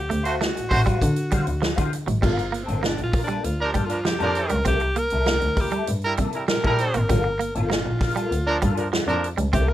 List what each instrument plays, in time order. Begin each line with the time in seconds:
Already playing: alto saxophone G4
0.09 double bass D2, clean electric guitar A3, muted clean electric guitar stroke, closed hi-hat
0.23 horn section A3 F#4 C5, clean electric guitar F#4 C5 F5, alto saxophone F#4, closed hi-hat
0.40 clean electric guitar A3, muted clean electric guitar stroke, snare
0.55 double bass A1, muted clean electric guitar stroke, closed hi-hat
0.69 double bass A1, horn section A3 F#4 C5, clean electric guitar F#4 C5 F#5, muted clean electric guitar stroke, kick, snare, open hi-hat
0.85 clean electric guitar G3 F#4 C5 F5, kick, closed hi-hat
1.00 double bass D3, muted clean electric guitar stroke, kick, closed hi-hat
1.16 closed hi-hat
1.30 double bass D3, clean electric guitar G3 F#4 C5 F5, kick, closed hi-hat
1.45 double bass D2, muted clean electric guitar stroke, closed hi-hat
1.61 clean electric guitar F3, muted clean electric guitar stroke, snare
1.76 double bass D3, clean electric guitar F#4 C5 F5, muted clean electric guitar stroke, kick, closed hi-hat
1.91 muted clean electric guitar stroke, closed hi-hat
2.06 double bass G#1, clean electric guitar F#3, muted clean electric guitar stroke, closed hi-hat
2.21 double bass G1, clean electric guitar G3 A#3 F4 A4, alto saxophone F4, kick, crash
2.36 muted clean electric guitar stroke, closed hi-hat
2.51 clean electric guitar A#3, muted clean electric guitar stroke, closed hi-hat
2.64 alto saxophone C4, clean electric guitar F4 A4
2.68 double bass G1, clean electric guitar A#3, closed hi-hat
2.82 double bass A#1, clean electric guitar A#3, alto saxophone D4, muted clean electric guitar stroke, snare
2.98 double bass A#1, muted clean electric guitar stroke, closed hi-hat
3.04 alto saxophone F4
3.11 clean electric guitar A#3 F4 A#4, muted clean electric guitar stroke, kick, open hi-hat
3.24 alto saxophone D4, clean electric guitar F4 A4
3.28 clean electric guitar G3 A#3, closed hi-hat
3.43 double bass D2, alto saxophone F4, muted clean electric guitar stroke, closed hi-hat
3.60 horn section F3 D4 A#4
3.65 alto saxophone G4
3.73 double bass G2, clean electric guitar G3 A#3 F4 A4, kick, closed hi-hat
3.85 horn section F3, alto saxophone F4
3.90 horn section D4 A#4, muted clean electric guitar stroke, closed hi-hat
4.04 double bass F2, clean electric guitar F3, alto saxophone G4, muted clean electric guitar stroke, snare
4.19 double bass F2, horn section F3 D4 A#4, clean electric guitar A#3 F4 A4, muted clean electric guitar stroke, closed hi-hat
4.35 muted clean electric guitar stroke, closed hi-hat
4.48 double bass C#2, clean electric guitar G3, alto saxophone A#4, muted clean electric guitar stroke, closed hi-hat
4.65 double bass C2, clean electric guitar A#3 C4 E4 A4, alto saxophone G4, kick, closed hi-hat
4.80 muted clean electric guitar stroke, closed hi-hat
4.96 clean electric guitar A#3, alto saxophone A#4, muted clean electric guitar stroke, closed hi-hat
5.10 double bass C2, clean electric guitar E4 A4, closed hi-hat
5.14 clean electric guitar A#3
5.26 double bass D2, clean electric guitar A#3, muted clean electric guitar stroke, snare
5.41 double bass D2, muted clean electric guitar stroke, closed hi-hat
5.56 clean electric guitar A#3 E4 A#4, muted clean electric guitar stroke, kick, open hi-hat
5.60 alto saxophone G4
5.71 clean electric guitar G3 A#3 E4 A4, closed hi-hat
5.86 double bass G2, muted clean electric guitar stroke, closed hi-hat
6.02 horn section G3 E4 A#4, closed hi-hat
6.17 double bass C3, clean electric guitar G3 A#3 E4 A4, kick, closed hi-hat
6.33 horn section G3 E4 A#4, muted clean electric guitar stroke, closed hi-hat
6.48 double bass A#2, clean electric guitar G3, alto saxophone A#4, muted clean electric guitar stroke, snare
6.62 double bass A#2, horn section G3 E4 A#4, clean electric guitar A#3 E4 A4, muted clean electric guitar stroke, kick
6.78 alto saxophone C5, muted clean electric guitar stroke, closed hi-hat
6.94 double bass G#1, clean electric guitar A#3, alto saxophone A#4, muted clean electric guitar stroke, closed hi-hat
7.09 double bass G1, clean electric guitar G3 A#3 F4 A4, kick, closed hi-hat
7.25 muted clean electric guitar stroke
7.39 clean electric guitar A#3, muted clean electric guitar stroke, closed hi-hat
7.55 double bass G1, clean electric guitar A#3 F4 A4, alto saxophone F4, closed hi-hat
7.70 double bass A#1, clean electric guitar A#3, muted clean electric guitar stroke, snare
7.85 double bass A#1, muted clean electric guitar stroke
8.01 clean electric guitar A#3 F4 A#4, muted clean electric guitar stroke, kick, snare, open hi-hat
8.15 clean electric guitar G3 A#3 F4 A4, closed hi-hat
8.31 double bass D2, closed hi-hat
8.47 horn section F3 D4 A#4, muted clean electric guitar stroke
8.62 double bass G2, clean electric guitar G3 A#3 F4 A4, kick, closed hi-hat
8.77 horn section F3 D4 A#4, muted clean electric guitar stroke, closed hi-hat
8.91 double bass F2, clean electric guitar F3, muted clean electric guitar stroke, snare
9.07 double bass F2, horn section F3 D4 A#4, clean electric guitar A#3 F4 A4, muted clean electric guitar stroke, closed hi-hat
9.23 muted clean electric guitar stroke, closed hi-hat
9.38 double bass C#2, clean electric guitar G3, muted clean electric guitar stroke, closed hi-hat
9.53 double bass C2, clean electric guitar A#3 C4 E4 A4, alto saxophone G4, kick, closed hi-hat
9.68 alto saxophone A#4, muted clean electric guitar stroke